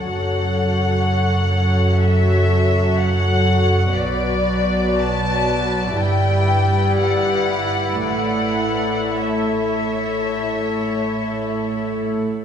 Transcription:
<<
  \new Staff \with { instrumentName = "Violin section" } { \time 4/4 \key a \mixolydian \tempo 4 = 58 fis''2 e''4 fis''4 | d''4 a''4 g''4 fis''4 | fis''4 e''2~ e''8 r8 | }
  \new Staff \with { instrumentName = "Violin section" } { \time 4/4 \key a \mixolydian <a' cis''>1 | <b' d''>1~ | <b' d''>4 <a' cis''>2. | }
  \new Staff \with { instrumentName = "Viola section" } { \time 4/4 \key a \mixolydian << { fis'1~ | fis'2 e'2~ | e'1 | } \\ { fis1~ | fis2 g2 | a1 | } >> }
  \new Staff \with { instrumentName = "Cello section" } { \clef bass \time 4/4 \key a \mixolydian fis,1 | b,2 g,2 | a,1 | }
  \new Staff \with { instrumentName = "Double bass section" } { \clef bass \time 4/4 \key a \mixolydian fis,,1 | b,,2 g,,2 | a,,1 | }
>>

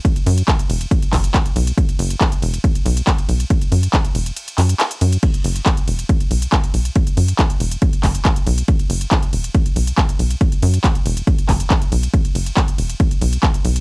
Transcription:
<<
  \new Staff \with { instrumentName = "Analog synth bass" } { \clef bass \time 4/4 \key e \dorian \tempo 4 = 139 r8 fis,8 r8 e,,8 r8 fis,,8 r8 b,,8 | r8 fis,,8 r8 e,,8 r8 b,,8 r8 b,,8 | r8 fis,8 r8 e,,8 r8 fis,8 r8 fis,8 | r8 fis,,8 r8 e,,8 r8 b,,8 r8 b,,8 |
r8 fis,8 r8 e,,8 r8 fis,,8 r8 b,,8 | r8 fis,,8 r8 e,,8 r8 b,,8 r8 b,,8 | r8 fis,8 r8 e,,8 r8 fis,,8 r8 b,,8 | r8 fis,,8 r8 e,,8 r8 b,,8 r8 b,,8 | }
  \new DrumStaff \with { instrumentName = "Drums" } \drummode { \time 4/4 <hh bd cymr>16 <hh cymr>16 <hho cymr>16 <hh cymr>16 <hc hh bd cymr>16 <hh cymr>16 <hho cymr>16 <hh cymr>16 <hh bd cymr>16 <hh cymr>16 <hc hho bd cymr>16 <hh cymr>16 <hc hh bd cymr>16 <hh cymr>16 <hho cymr>16 <hh cymr>16 | <hh bd cymr>16 <hh cymr>16 <hho cymr>16 <hh cymr>16 <hc hh bd cymr>16 <hh cymr>16 <hho cymr>16 <hh cymr>16 <hh bd cymr>16 <hh cymr>16 <hho cymr>16 <hh cymr>16 <hc hh bd cymr>16 <hh cymr>16 <hho cymr>16 <hh cymr>16 | <hh bd cymr>16 <hh cymr>16 <hho cymr>16 <hh cymr>16 <hc hh bd cymr>16 <hh cymr>16 <hho cymr>16 <hh cymr>16 <hh cymr>16 <hh cymr>16 <hc hho cymr>16 <hh cymr>16 <hc hh cymr>16 <hh cymr>16 <hho cymr>16 <hh cymr>16 | <cymc hh bd cymr>16 <hh cymr>16 <hho cymr>16 <hh cymr>16 <hc hh bd cymr>16 <hh cymr>16 <hho cymr>16 <hh cymr>16 <hh bd cymr>16 <hh cymr>16 <hho cymr>16 <hh cymr>16 <hc hh bd>16 <hh cymr>16 <hho cymr>16 <hh cymr>16 |
<hh bd cymr>16 <hh cymr>16 <hho cymr>16 <hh cymr>16 <hc hh bd cymr>16 <hh cymr>16 <hho cymr>16 <hh cymr>16 <hh bd cymr>16 <hh cymr>16 <hc hho bd cymr>16 <hh cymr>16 <hc hh bd cymr>16 <hh cymr>16 <hho cymr>16 <hh cymr>16 | <hh bd cymr>16 <hh cymr>16 <hho cymr>16 <hh cymr>16 <hc hh bd cymr>16 <hh cymr>16 <hho cymr>16 <hh cymr>16 <hh bd cymr>16 <hh cymr>16 <hho cymr>16 <hh cymr>16 <hc hh bd cymr>16 <hh cymr>16 <hho cymr>16 <hh cymr>16 | <hh bd cymr>16 <hh cymr>16 <hho cymr>16 <hh cymr>16 <hc hh bd cymr>16 <hh cymr>16 <hho cymr>16 <hh cymr>16 <hh bd cymr>16 <hh cymr>16 <hc hho bd cymr>16 <hh cymr>16 <hc hh bd cymr>16 <hh cymr>16 <hho cymr>16 <hh cymr>16 | <hh bd cymr>16 <hh cymr>16 <hho cymr>16 <hh cymr>16 <hc hh bd cymr>16 <hh cymr>16 <hho cymr>16 <hh cymr>16 <hh bd cymr>16 <hh cymr>16 <hho cymr>16 <hh cymr>16 <hc hh bd cymr>16 <hh cymr>16 <hho cymr>16 <hh cymr>16 | }
>>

